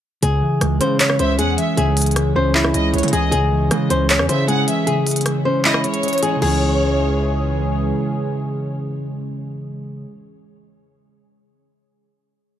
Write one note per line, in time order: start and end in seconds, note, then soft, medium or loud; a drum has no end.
0.23 0.41 C#2 loud
0.23 1.19 C#3 medium
0.23 6.38 E3 medium
0.23 6.38 G#3 medium
0.23 6.38 C#4 medium
0.23 6.38 G#4 medium
0.23 0.77 G#4 loud
0.23 closed hi-hat medium
0.42 1.39 E3 medium
0.61 0.80 C#2 loud
0.61 1.38 G#3 medium
0.61 cross-stick medium
0.61 closed hi-hat medium
0.81 1.18 C#3 loud
0.81 1.18 C#4 loud
0.81 0.97 C5 medium
0.81 closed hi-hat medium
1.00 1.97 C#5 medium
1.00 1.17 C#5 medium
1.00 clap loud
1.00 closed hi-hat medium
1.10 cross-stick medium
1.19 1.40 C#2 loud
1.19 2.16 C#4 medium
1.19 1.36 C5 medium
1.19 1.38 E5 medium
1.19 closed hi-hat medium
1.39 1.57 E2 loud
1.39 2.15 G#3 loud
1.39 1.75 G#4 medium
1.39 1.57 F#5 medium
1.39 closed hi-hat medium
1.58 1.96 E3 medium
1.58 1.77 E5 medium
1.58 closed hi-hat medium
1.77 2.33 C#2 loud
1.77 2.74 C#3 loud
1.77 2.32 G#4 loud
1.77 closed hi-hat medium
1.97 2.94 E3 medium
1.97 closed hi-hat medium
1.97 open hi-hat medium
2.02 closed hi-hat medium
2.06 closed hi-hat medium
2.11 closed hi-hat medium
2.16 2.92 G#3 medium
2.16 cross-stick medium
2.16 closed hi-hat medium
2.36 2.73 C#2 loud
2.36 2.73 C#4 loud
2.36 2.52 C5 medium
2.55 3.09 E4 medium
2.55 3.32 C#5 medium
2.55 clap loud
2.64 cross-stick loud
2.74 2.93 C#2 loud
2.74 3.32 C#4 medium
2.74 2.93 D#5 medium
2.74 closed hi-hat medium
2.94 3.03 C#2 loud
2.94 3.32 G#3 loud
2.94 3.12 C#5 medium
2.94 closed hi-hat soft
2.98 closed hi-hat medium
3.03 3.12 C#3 loud
3.03 closed hi-hat medium
3.08 closed hi-hat medium
3.13 3.32 C#2 loud
3.13 3.32 E3 medium
3.13 3.29 G#4 medium
3.13 3.31 D#5 medium
3.13 closed hi-hat medium
3.32 3.69 C#2 loud
3.32 4.29 C#3 medium
3.32 3.86 G#4 loud
3.32 closed hi-hat medium
3.52 4.48 E3 medium
3.71 3.90 C#3 loud
3.71 4.47 G#3 medium
3.71 cross-stick medium
3.71 closed hi-hat medium
3.90 4.21 C#2 loud
3.90 4.28 C#4 loud
3.90 4.07 C5 medium
3.90 closed hi-hat medium
4.10 5.07 C#5 medium
4.10 4.26 C#5 medium
4.10 clap loud
4.10 closed hi-hat medium
4.19 4.29 E2 loud
4.19 cross-stick loud
4.29 4.66 C#3 loud
4.29 5.26 C#4 medium
4.29 4.45 C5 medium
4.29 4.48 E5 medium
4.29 closed hi-hat medium
4.48 5.25 G#3 loud
4.48 4.85 G#4 medium
4.48 4.67 F#5 medium
4.48 closed hi-hat medium
4.68 5.05 E3 medium
4.68 4.86 E5 medium
4.68 closed hi-hat medium
4.87 5.84 C#3 loud
4.87 5.42 G#4 loud
4.87 closed hi-hat medium
5.07 6.03 E3 medium
5.07 closed hi-hat medium
5.07 open hi-hat medium
5.11 closed hi-hat medium
5.16 closed hi-hat medium
5.21 closed hi-hat medium
5.26 6.02 G#3 medium
5.26 cross-stick medium
5.26 closed hi-hat medium
5.45 5.83 C#4 loud
5.45 5.62 C5 medium
5.65 6.19 E4 medium
5.65 6.42 C#5 medium
5.65 5.83 D#5 medium
5.65 clap loud
5.74 cross-stick loud
5.84 6.42 C#4 medium
5.84 6.38 C#5 loud
5.84 closed hi-hat medium
5.94 closed hi-hat medium
6.03 6.42 G#3 loud
6.03 closed hi-hat medium
6.08 closed hi-hat medium
6.13 closed hi-hat medium
6.18 closed hi-hat medium
6.23 6.39 E3 medium
6.23 6.39 G#4 medium
6.23 closed hi-hat medium
6.36 10.04 C#3 medium
6.36 10.08 E3 medium
6.42 7.93 C#2 loud
6.42 10.10 E3 medium
6.42 10.10 G#3 medium
6.42 10.12 G#3 medium
6.42 10.10 C#4 medium
6.42 10.10 G#4 medium
6.42 7.54 G#4 medium
6.42 7.54 C#5 loud
6.42 crash medium
6.48 10.16 C#4 medium